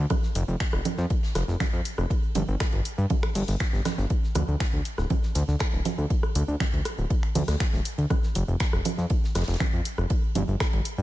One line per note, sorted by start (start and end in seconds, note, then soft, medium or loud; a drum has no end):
0.10 kick loud
0.10 cross-stick medium
0.10 ride medium
0.10 low conga loud
0.10 shaker soft
0.23 snare soft
0.23 shaker soft
0.35 0.43 F1 medium
0.35 open hi-hat loud
0.35 ride medium
0.35 shaker medium
0.48 0.56 F1 medium
0.48 shaker soft
0.60 finger snap loud
0.60 kick loud
0.60 snare loud
0.60 ride medium
0.60 shaker soft
0.73 0.81 F1 medium
0.73 cross-stick medium
0.73 shaker soft
0.85 open hi-hat loud
0.85 ride medium
0.85 low conga loud
0.85 shaker medium
0.98 1.06 F2 medium
0.98 snare soft
0.98 shaker soft
1.10 kick loud
1.10 ride medium
1.10 shaker soft
1.23 snare medium
1.23 shaker soft
1.35 1.43 F1 medium
1.35 cross-stick medium
1.35 snare soft
1.35 open hi-hat loud
1.35 ride medium
1.35 shaker medium
1.48 1.56 F1 medium
1.48 snare soft
1.48 shaker soft
1.60 finger snap loud
1.60 kick loud
1.60 snare loud
1.60 ride medium
1.60 low conga loud
1.60 shaker soft
1.73 1.81 F2 medium
1.73 shaker soft
1.85 open hi-hat loud
1.85 ride medium
1.85 shaker medium
1.98 2.06 F1 medium
1.98 cross-stick medium
1.98 shaker soft
2.10 kick loud
2.10 ride medium
2.10 shaker soft
2.23 shaker soft
2.35 2.43 G1 medium
2.35 open hi-hat loud
2.35 ride medium
2.35 low conga loud
2.35 shaker medium
2.48 2.56 G1 medium
2.48 shaker soft
2.60 finger snap loud
2.60 kick loud
2.60 cross-stick medium
2.60 snare loud
2.60 ride loud
2.60 shaker medium
2.72 2.81 G1 medium
2.72 ride soft
2.72 shaker soft
2.85 open hi-hat loud
2.85 ride medium
2.85 shaker medium
2.98 3.06 G2 medium
2.98 shaker soft
3.10 kick loud
3.10 ride medium
3.10 low conga loud
3.10 shaker soft
3.23 finger snap soft
3.23 cross-stick medium
3.23 shaker soft
3.35 3.43 G1 medium
3.35 open hi-hat medium
3.35 open hi-hat loud
3.35 shaker medium
3.48 3.56 G1 medium
3.48 snare medium
3.48 open hi-hat medium
3.48 shaker soft
3.60 finger snap loud
3.60 kick loud
3.60 snare loud
3.60 ride medium
3.60 shaker soft
3.73 3.81 G1 medium
3.73 snare soft
3.73 shaker soft
3.85 cross-stick medium
3.85 snare loud
3.85 open hi-hat loud
3.85 ride medium
3.85 low conga loud
3.85 shaker medium
3.98 4.06 G1 medium
3.98 snare soft
3.98 shaker soft
4.10 kick loud
4.10 ride medium
4.10 shaker soft
4.23 snare soft
4.23 shaker soft
4.35 4.43 D2 medium
4.35 cross-stick soft
4.35 open hi-hat loud
4.35 ride medium
4.35 low conga medium
4.35 shaker medium
4.48 4.56 D2 medium
4.48 shaker soft
4.60 finger snap loud
4.60 kick loud
4.60 snare loud
4.60 ride medium
4.60 shaker soft
4.73 4.81 D2 medium
4.73 shaker soft
4.85 open hi-hat loud
4.85 ride medium
4.85 shaker medium
4.98 5.06 D1 medium
4.98 cross-stick medium
4.98 snare soft
4.98 shaker soft
5.10 kick loud
5.10 ride medium
5.10 low conga loud
5.10 shaker soft
5.23 snare medium
5.23 shaker soft
5.35 5.43 D2 loud
5.35 snare medium
5.35 open hi-hat loud
5.35 ride medium
5.35 shaker medium
5.48 5.56 D2 medium
5.48 snare medium
5.48 shaker soft
5.59 finger snap loud
5.59 kick loud
5.59 cross-stick medium
5.59 snare loud
5.59 ride medium
5.59 shaker soft
5.73 5.81 D1 medium
5.73 shaker soft
5.85 open hi-hat loud
5.85 ride medium
5.85 low conga loud
5.85 shaker medium
5.98 6.06 D2 medium
5.98 shaker soft
6.10 kick loud
6.10 ride medium
6.10 shaker soft
6.23 cross-stick soft
6.23 shaker soft
6.35 6.43 D2 medium
6.35 open hi-hat loud
6.35 ride medium
6.35 shaker medium
6.48 6.56 D2 medium
6.48 shaker soft
6.60 finger snap loud
6.60 kick loud
6.60 snare loud
6.60 ride medium
6.60 low conga medium
6.60 shaker soft
6.73 6.81 D2 medium
6.73 ride soft
6.73 shaker soft
6.85 cross-stick medium
6.85 open hi-hat loud
6.85 ride medium
6.85 shaker medium
6.98 7.06 D1 medium
6.98 shaker soft
7.10 kick loud
7.10 ride medium
7.10 shaker soft
7.23 finger snap soft
7.23 shaker soft
7.35 7.43 D2 medium
7.35 open hi-hat loud
7.35 open hi-hat medium
7.35 low conga medium
7.35 shaker medium
7.48 7.56 D2 medium
7.48 cross-stick soft
7.48 snare medium
7.48 open hi-hat medium
7.48 shaker soft
7.60 finger snap loud
7.60 kick loud
7.60 snare loud
7.60 ride medium
7.60 shaker soft
7.73 7.81 D1 medium
7.73 snare soft
7.73 shaker soft
7.85 open hi-hat loud
7.85 ride medium
7.85 shaker medium
7.98 8.06 D2 medium
7.98 ride soft
7.98 shaker soft
8.10 kick loud
8.10 cross-stick medium
8.10 ride medium
8.10 low conga medium
8.10 shaker soft
8.23 snare soft
8.23 shaker soft
8.35 8.43 F1 medium
8.35 open hi-hat loud
8.35 ride medium
8.35 shaker medium
8.48 8.56 F1 medium
8.48 shaker soft
8.60 finger snap loud
8.60 kick loud
8.60 snare loud
8.60 ride medium
8.60 shaker soft
8.73 8.81 F1 medium
8.73 cross-stick soft
8.73 shaker soft
8.85 open hi-hat loud
8.85 ride medium
8.85 low conga medium
8.85 shaker medium
8.97 9.06 F2 medium
8.97 snare soft
8.97 shaker soft
9.10 kick loud
9.10 ride medium
9.10 shaker soft
9.23 snare medium
9.23 shaker soft
9.35 9.43 F1 medium
9.35 cross-stick medium
9.35 snare medium
9.35 open hi-hat loud
9.35 ride medium
9.35 shaker medium
9.41 snare loud
9.41 ride medium
9.47 9.56 F1 medium
9.47 snare medium
9.47 ride medium
9.47 shaker soft
9.54 snare medium
9.54 ride medium
9.60 finger snap loud
9.60 kick loud
9.60 snare loud
9.60 ride medium
9.60 low conga medium
9.60 shaker soft
9.73 9.81 F2 medium
9.73 shaker soft
9.85 open hi-hat loud
9.85 ride medium
9.85 shaker medium
9.98 10.06 F1 medium
9.98 cross-stick soft
9.98 shaker soft
10.10 kick loud
10.10 ride medium
10.10 shaker soft
10.23 shaker soft
10.35 10.43 G1 loud
10.35 open hi-hat loud
10.35 ride medium
10.35 low conga medium
10.35 shaker medium
10.48 10.56 G1 medium
10.48 shaker soft
10.60 finger snap loud
10.60 kick loud
10.60 cross-stick medium
10.60 snare loud
10.60 ride medium
10.60 shaker soft
10.73 10.81 G1 medium
10.73 ride soft
10.73 shaker soft
10.85 open hi-hat loud
10.85 ride medium
10.85 shaker medium
10.98 11.02 G2 medium
10.98 shaker soft